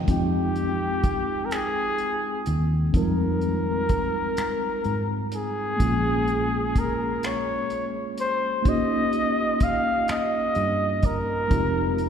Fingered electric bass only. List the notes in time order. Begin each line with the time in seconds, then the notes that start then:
0.08 F2
2.47 D#2
2.94 F2
4.38 muted fingered electric bass stroke
4.85 G#2
5.80 A#1
8.19 C#2
10.10 muted fingered electric bass stroke
10.56 G2
11.51 F1